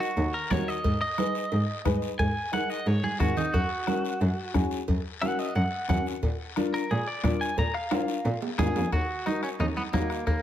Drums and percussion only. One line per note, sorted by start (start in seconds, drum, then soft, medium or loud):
0.01 short guiro medium
0.17 cowbell medium
0.17 high conga soft
0.17 long guiro medium
0.51 bombo low medium
0.51 bombo rim medium
0.51 cowbell medium
0.51 high conga medium
0.51 low conga medium
0.51 short guiro medium
0.68 short guiro medium
0.84 bombo low medium
0.84 cowbell loud
0.84 high conga soft
0.84 long guiro medium
1.18 bombo rim medium
1.18 cowbell medium
1.18 high conga medium
1.18 short guiro medium
1.35 short guiro medium
1.52 cowbell medium
1.52 high conga soft
1.52 long guiro medium
1.85 bombo low medium
1.85 bombo rim medium
1.85 cowbell medium
1.85 high conga medium
1.85 short guiro medium
2.02 short guiro medium
2.19 bombo low medium
2.19 cowbell loud
2.19 high conga soft
2.19 long guiro medium
2.53 bombo rim medium
2.53 cowbell medium
2.53 high conga medium
2.53 short guiro medium
2.70 short guiro medium
2.86 cowbell medium
2.86 high conga soft
2.86 long guiro medium
3.03 high conga medium
3.20 bombo low medium
3.20 bombo rim medium
3.20 cowbell medium
3.20 low conga medium
3.20 short guiro medium
3.37 low conga medium
3.37 short guiro medium
3.54 bombo low medium
3.54 cowbell loud
3.54 high conga soft
3.54 long guiro medium
3.87 bombo rim medium
3.87 cowbell medium
3.87 high conga medium
3.87 short guiro medium
4.05 short guiro medium
4.21 cowbell medium
4.21 high conga soft
4.21 long guiro medium
4.54 bombo low medium
4.54 bombo rim medium
4.54 cowbell medium
4.54 high conga medium
4.54 short guiro medium
4.71 short guiro medium
4.88 bombo low medium
4.88 cowbell medium
4.88 high conga soft
4.88 long guiro medium
5.22 bombo rim medium
5.22 cowbell medium
5.22 high conga medium
5.22 short guiro medium
5.39 short guiro medium
5.55 cowbell medium
5.55 high conga soft
5.55 long guiro medium
5.89 bombo low medium
5.89 bombo rim medium
5.89 cowbell medium
5.89 high conga medium
5.89 low conga medium
5.89 short guiro medium
6.06 short guiro medium
6.23 bombo low medium
6.23 cowbell loud
6.23 high conga soft
6.23 long guiro medium
6.56 bombo rim medium
6.56 cowbell medium
6.56 high conga medium
6.56 short guiro medium
6.74 short guiro medium
6.90 cowbell medium
6.90 high conga soft
6.90 long guiro medium
7.24 bombo low medium
7.24 bombo rim medium
7.24 cowbell medium
7.24 high conga medium
7.24 short guiro medium
7.41 short guiro medium
7.58 bombo low medium
7.58 cowbell loud
7.58 high conga soft
7.58 long guiro medium
7.74 bombo rim medium
7.91 bombo rim medium
7.91 cowbell medium
7.91 high conga medium
7.91 high timbale loud
7.91 short guiro medium
8.08 short guiro medium
8.25 cowbell medium
8.25 high conga soft
8.25 long guiro medium
8.42 low timbale medium
8.58 bombo low medium
8.58 bombo rim medium
8.58 cowbell medium
8.58 high conga medium
8.58 low conga medium
8.58 low timbale loud
8.58 short guiro medium
8.76 low timbale loud
8.76 short guiro medium
8.92 bombo low medium
8.92 bombo rim medium
8.92 cowbell medium
8.92 long guiro medium
9.26 bombo rim medium
9.26 cowbell medium
9.26 high conga medium
9.26 short guiro medium
9.43 bombo rim medium
9.43 short guiro medium
9.60 bombo rim medium
9.60 cowbell medium
9.60 low conga medium
9.60 long guiro medium
9.77 high conga medium
9.93 bombo low medium
9.93 bombo rim medium
9.93 cowbell medium
9.93 high conga medium
9.93 low timbale medium
9.93 short guiro medium
10.10 bombo rim medium
10.10 short guiro medium
10.27 bombo low medium
10.27 bombo rim medium
10.27 cowbell loud
10.27 long guiro medium